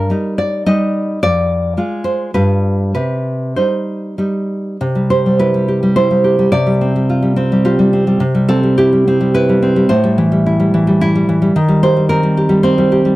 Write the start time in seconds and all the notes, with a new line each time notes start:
Already playing: A#4
0.10 G3 D#4
0.38 D5
0.66 G3 D#4 D#5
1.23 F2 D5
1.77 G#3 F4
2.04 C5
2.34 G2 G3 F4 B4
2.95 C3 B4
3.56 G3 D#4 C5
4.18 G3 D#4
4.81 C3
4.95 G3
5.10 G4 C5
5.26 G3
5.39 E4 B4
5.54 G3
5.68 G4
5.83 G3
5.96 E4 C5
6.11 G3
6.24 G4
6.39 G3
6.52 C3 D5
6.66 G3
6.81 C4
6.96 G3
7.09 F4
7.22 G3
7.36 C4
7.52 G3
7.65 F4 G4
7.79 G3
7.93 C4
8.07 G3
8.20 C3
8.35 G3
8.49 C4 A4
8.63 G3
8.78 E4 G4
8.93 G3
9.08 C4
9.21 G3
9.35 E4 B4
9.49 G3
9.62 C4
9.76 G3
9.89 A2 C5
10.04 G3
10.18 E3
10.32 G3
10.46 E4
10.60 G3
10.74 E3
10.87 G3
11.01 E4
11.15 G3
11.29 E3
11.42 G3
11.56 D#3
11.68 G3
11.83 G4 C5
11.97 G3
12.09 C4 A#4
12.23 G3
12.37 G4
12.49 G3
12.63 C4 C5
12.78 G3
12.92 G4
13.05 G3